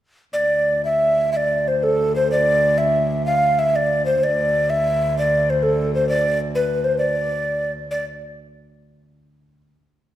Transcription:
0, 0, Header, 1, 3, 480
1, 0, Start_track
1, 0, Tempo, 325380
1, 528, Time_signature, 6, 3, 24, 8
1, 4844, Tempo, 314795
1, 8684, Tempo, 302267
1, 12044, Tempo, 290980
1, 15728, End_track
2, 0, Start_track
2, 0, Title_t, "Recorder"
2, 0, Program_c, 0, 74
2, 491, Note_on_c, 0, 74, 86
2, 1234, Note_off_c, 0, 74, 0
2, 1252, Note_on_c, 0, 76, 85
2, 1925, Note_off_c, 0, 76, 0
2, 1956, Note_on_c, 0, 76, 75
2, 2016, Note_on_c, 0, 74, 81
2, 2030, Note_off_c, 0, 76, 0
2, 2476, Note_on_c, 0, 72, 75
2, 2498, Note_off_c, 0, 74, 0
2, 2705, Note_on_c, 0, 69, 82
2, 2727, Note_off_c, 0, 72, 0
2, 3171, Note_off_c, 0, 69, 0
2, 3180, Note_on_c, 0, 72, 78
2, 3401, Note_off_c, 0, 72, 0
2, 3415, Note_on_c, 0, 74, 95
2, 4101, Note_on_c, 0, 76, 83
2, 4123, Note_off_c, 0, 74, 0
2, 4798, Note_off_c, 0, 76, 0
2, 4806, Note_on_c, 0, 77, 93
2, 5308, Note_on_c, 0, 76, 82
2, 5331, Note_off_c, 0, 77, 0
2, 5566, Note_on_c, 0, 74, 83
2, 5589, Note_off_c, 0, 76, 0
2, 6015, Note_off_c, 0, 74, 0
2, 6024, Note_on_c, 0, 72, 77
2, 6296, Note_on_c, 0, 74, 88
2, 6319, Note_off_c, 0, 72, 0
2, 7002, Note_on_c, 0, 76, 88
2, 7024, Note_off_c, 0, 74, 0
2, 7728, Note_off_c, 0, 76, 0
2, 7741, Note_on_c, 0, 74, 84
2, 8223, Note_on_c, 0, 72, 77
2, 8246, Note_off_c, 0, 74, 0
2, 8421, Note_on_c, 0, 69, 71
2, 8444, Note_off_c, 0, 72, 0
2, 8906, Note_off_c, 0, 69, 0
2, 8916, Note_on_c, 0, 72, 70
2, 9130, Note_off_c, 0, 72, 0
2, 9140, Note_on_c, 0, 74, 89
2, 9607, Note_off_c, 0, 74, 0
2, 9875, Note_on_c, 0, 71, 78
2, 10337, Note_on_c, 0, 72, 72
2, 10361, Note_off_c, 0, 71, 0
2, 10550, Note_off_c, 0, 72, 0
2, 10560, Note_on_c, 0, 74, 81
2, 11714, Note_off_c, 0, 74, 0
2, 12032, Note_on_c, 0, 74, 76
2, 12263, Note_off_c, 0, 74, 0
2, 15728, End_track
3, 0, Start_track
3, 0, Title_t, "Viola da gamba"
3, 0, Program_c, 1, 42
3, 540, Note_on_c, 1, 38, 63
3, 6310, Note_off_c, 1, 38, 0
3, 6320, Note_on_c, 1, 38, 69
3, 12102, Note_off_c, 1, 38, 0
3, 15728, End_track
0, 0, End_of_file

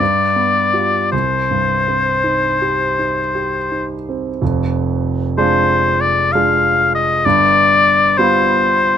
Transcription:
0, 0, Header, 1, 3, 480
1, 0, Start_track
1, 0, Tempo, 1123596
1, 479, Time_signature, 3, 2, 24, 8
1, 960, Tempo, 1083032
1, 1920, Tempo, 960000
1, 2880, Tempo, 924499
1, 4253, End_track
2, 0, Start_track
2, 0, Title_t, "Oboe"
2, 0, Program_c, 0, 68
2, 0, Note_on_c, 0, 74, 70
2, 474, Note_off_c, 0, 74, 0
2, 476, Note_on_c, 0, 72, 67
2, 1673, Note_off_c, 0, 72, 0
2, 2404, Note_on_c, 0, 72, 79
2, 2718, Note_on_c, 0, 74, 73
2, 2726, Note_off_c, 0, 72, 0
2, 2876, Note_on_c, 0, 77, 86
2, 2884, Note_off_c, 0, 74, 0
2, 3195, Note_off_c, 0, 77, 0
2, 3199, Note_on_c, 0, 75, 79
2, 3358, Note_on_c, 0, 74, 96
2, 3365, Note_off_c, 0, 75, 0
2, 3836, Note_on_c, 0, 72, 81
2, 3844, Note_off_c, 0, 74, 0
2, 4253, Note_off_c, 0, 72, 0
2, 4253, End_track
3, 0, Start_track
3, 0, Title_t, "Grand piano"
3, 0, Program_c, 1, 0
3, 0, Control_c, 1, 64, 127
3, 0, Note_on_c, 1, 43, 46
3, 8, Control_c, 1, 64, 0
3, 94, Control_c, 1, 64, 127
3, 154, Note_on_c, 1, 59, 36
3, 312, Note_on_c, 1, 65, 34
3, 315, Note_on_c, 1, 67, 39
3, 412, Note_off_c, 1, 59, 0
3, 461, Note_off_c, 1, 65, 0
3, 462, Note_off_c, 1, 67, 0
3, 464, Note_off_c, 1, 43, 0
3, 481, Note_on_c, 1, 36, 41
3, 488, Control_c, 1, 64, 0
3, 585, Control_c, 1, 64, 127
3, 644, Note_on_c, 1, 43, 36
3, 803, Note_on_c, 1, 60, 36
3, 899, Note_off_c, 1, 43, 0
3, 957, Note_on_c, 1, 63, 39
3, 1059, Note_off_c, 1, 60, 0
3, 1124, Note_on_c, 1, 67, 37
3, 1219, Note_off_c, 1, 63, 0
3, 1289, Note_on_c, 1, 63, 34
3, 1383, Note_off_c, 1, 67, 0
3, 1448, Note_on_c, 1, 67, 35
3, 1546, Note_off_c, 1, 63, 0
3, 1611, Note_on_c, 1, 63, 34
3, 1708, Note_off_c, 1, 67, 0
3, 1776, Note_on_c, 1, 60, 33
3, 1863, Note_off_c, 1, 63, 0
3, 1904, Note_off_c, 1, 36, 0
3, 1922, Note_on_c, 1, 41, 56
3, 1923, Note_off_c, 1, 60, 0
3, 1924, Note_on_c, 1, 29, 55
3, 1928, Control_c, 1, 64, 0
3, 2019, Control_c, 1, 64, 127
3, 2401, Note_on_c, 1, 56, 54
3, 2404, Note_on_c, 1, 62, 56
3, 2408, Note_on_c, 1, 65, 53
3, 2859, Note_off_c, 1, 56, 0
3, 2861, Note_off_c, 1, 62, 0
3, 2863, Note_off_c, 1, 65, 0
3, 2889, Note_on_c, 1, 56, 49
3, 2890, Note_on_c, 1, 62, 51
3, 2892, Note_on_c, 1, 65, 55
3, 3334, Note_off_c, 1, 41, 0
3, 3335, Note_off_c, 1, 29, 0
3, 3338, Note_off_c, 1, 56, 0
3, 3338, Note_off_c, 1, 62, 0
3, 3339, Note_off_c, 1, 65, 0
3, 3360, Note_on_c, 1, 31, 50
3, 3361, Note_on_c, 1, 43, 60
3, 3363, Control_c, 1, 64, 0
3, 3440, Control_c, 1, 64, 127
3, 3841, Note_on_c, 1, 55, 56
3, 3844, Note_on_c, 1, 59, 51
3, 3847, Note_on_c, 1, 65, 60
3, 4253, Note_off_c, 1, 31, 0
3, 4253, Note_off_c, 1, 43, 0
3, 4253, Note_off_c, 1, 55, 0
3, 4253, Note_off_c, 1, 59, 0
3, 4253, Note_off_c, 1, 65, 0
3, 4253, End_track
0, 0, End_of_file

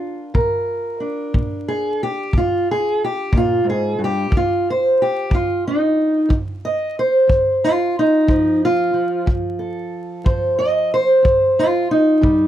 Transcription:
0, 0, Header, 1, 3, 480
1, 0, Start_track
1, 0, Tempo, 660066
1, 252, Time_signature, 12, 3, 24, 8
1, 9072, End_track
2, 0, Start_track
2, 0, Title_t, "Steel-string acoustic guitar"
2, 0, Program_c, 0, 25
2, 0, Note_on_c, 0, 62, 51
2, 0, Note_on_c, 0, 65, 45
2, 0, Note_on_c, 0, 70, 47
2, 225, Note_off_c, 0, 62, 0
2, 225, Note_off_c, 0, 70, 0
2, 247, Note_on_c, 0, 46, 69
2, 254, Note_on_c, 0, 70, 50
2, 683, Note_off_c, 0, 46, 0
2, 729, Note_on_c, 0, 62, 52
2, 973, Note_on_c, 0, 46, 67
2, 1221, Note_off_c, 0, 65, 0
2, 1224, Note_on_c, 0, 68, 96
2, 1406, Note_off_c, 0, 46, 0
2, 1456, Note_off_c, 0, 70, 0
2, 1460, Note_off_c, 0, 68, 0
2, 1476, Note_on_c, 0, 67, 100
2, 1695, Note_on_c, 0, 46, 70
2, 1706, Note_off_c, 0, 67, 0
2, 1728, Note_on_c, 0, 65, 93
2, 1952, Note_off_c, 0, 65, 0
2, 1973, Note_on_c, 0, 68, 96
2, 2128, Note_off_c, 0, 46, 0
2, 2195, Note_off_c, 0, 68, 0
2, 2214, Note_on_c, 0, 67, 95
2, 2414, Note_on_c, 0, 46, 67
2, 2435, Note_off_c, 0, 67, 0
2, 2453, Note_on_c, 0, 65, 102
2, 2644, Note_off_c, 0, 46, 0
2, 2647, Note_on_c, 0, 44, 66
2, 2675, Note_off_c, 0, 65, 0
2, 2688, Note_on_c, 0, 68, 92
2, 2892, Note_off_c, 0, 44, 0
2, 2899, Note_on_c, 0, 43, 75
2, 2912, Note_off_c, 0, 68, 0
2, 2938, Note_on_c, 0, 67, 100
2, 3106, Note_off_c, 0, 62, 0
2, 3128, Note_off_c, 0, 43, 0
2, 3131, Note_on_c, 0, 41, 76
2, 3158, Note_off_c, 0, 67, 0
2, 3178, Note_on_c, 0, 65, 100
2, 3397, Note_off_c, 0, 65, 0
2, 3420, Note_on_c, 0, 72, 93
2, 3566, Note_off_c, 0, 41, 0
2, 3639, Note_off_c, 0, 72, 0
2, 3649, Note_on_c, 0, 67, 91
2, 3852, Note_on_c, 0, 41, 71
2, 3873, Note_off_c, 0, 67, 0
2, 3886, Note_on_c, 0, 65, 88
2, 4112, Note_off_c, 0, 65, 0
2, 4127, Note_on_c, 0, 63, 86
2, 4287, Note_off_c, 0, 41, 0
2, 4572, Note_on_c, 0, 41, 77
2, 4592, Note_off_c, 0, 63, 0
2, 4835, Note_on_c, 0, 75, 101
2, 5006, Note_off_c, 0, 41, 0
2, 5066, Note_off_c, 0, 75, 0
2, 5083, Note_on_c, 0, 72, 98
2, 5290, Note_on_c, 0, 41, 74
2, 5550, Note_off_c, 0, 72, 0
2, 5558, Note_on_c, 0, 65, 95
2, 5725, Note_off_c, 0, 41, 0
2, 5787, Note_off_c, 0, 65, 0
2, 5811, Note_on_c, 0, 63, 94
2, 6015, Note_on_c, 0, 41, 73
2, 6019, Note_on_c, 0, 53, 54
2, 6273, Note_off_c, 0, 63, 0
2, 6289, Note_on_c, 0, 65, 103
2, 6447, Note_off_c, 0, 41, 0
2, 6490, Note_off_c, 0, 53, 0
2, 6499, Note_on_c, 0, 53, 47
2, 6735, Note_on_c, 0, 41, 72
2, 6751, Note_off_c, 0, 65, 0
2, 6975, Note_on_c, 0, 69, 50
2, 7166, Note_off_c, 0, 41, 0
2, 7448, Note_on_c, 0, 41, 72
2, 7457, Note_on_c, 0, 72, 53
2, 7694, Note_off_c, 0, 72, 0
2, 7698, Note_on_c, 0, 75, 92
2, 7881, Note_off_c, 0, 41, 0
2, 7934, Note_off_c, 0, 75, 0
2, 7954, Note_on_c, 0, 72, 101
2, 8164, Note_on_c, 0, 41, 80
2, 8421, Note_off_c, 0, 72, 0
2, 8430, Note_on_c, 0, 65, 98
2, 8598, Note_off_c, 0, 41, 0
2, 8659, Note_off_c, 0, 65, 0
2, 8661, Note_on_c, 0, 63, 99
2, 8860, Note_off_c, 0, 69, 0
2, 8881, Note_on_c, 0, 48, 75
2, 8884, Note_off_c, 0, 53, 0
2, 8887, Note_on_c, 0, 55, 52
2, 9072, Note_off_c, 0, 48, 0
2, 9072, Note_off_c, 0, 55, 0
2, 9072, Note_off_c, 0, 63, 0
2, 9072, End_track
3, 0, Start_track
3, 0, Title_t, "Drums"
3, 253, Note_on_c, 9, 36, 60
3, 326, Note_off_c, 9, 36, 0
3, 976, Note_on_c, 9, 36, 60
3, 1048, Note_off_c, 9, 36, 0
3, 1697, Note_on_c, 9, 36, 69
3, 1769, Note_off_c, 9, 36, 0
3, 2419, Note_on_c, 9, 36, 71
3, 2492, Note_off_c, 9, 36, 0
3, 3141, Note_on_c, 9, 36, 68
3, 3214, Note_off_c, 9, 36, 0
3, 3863, Note_on_c, 9, 36, 65
3, 3935, Note_off_c, 9, 36, 0
3, 4583, Note_on_c, 9, 36, 72
3, 4656, Note_off_c, 9, 36, 0
3, 5305, Note_on_c, 9, 36, 75
3, 5378, Note_off_c, 9, 36, 0
3, 6024, Note_on_c, 9, 36, 66
3, 6097, Note_off_c, 9, 36, 0
3, 6743, Note_on_c, 9, 36, 60
3, 6816, Note_off_c, 9, 36, 0
3, 7461, Note_on_c, 9, 36, 75
3, 7533, Note_off_c, 9, 36, 0
3, 8181, Note_on_c, 9, 36, 71
3, 8254, Note_off_c, 9, 36, 0
3, 8896, Note_on_c, 9, 36, 65
3, 8969, Note_off_c, 9, 36, 0
3, 9072, End_track
0, 0, End_of_file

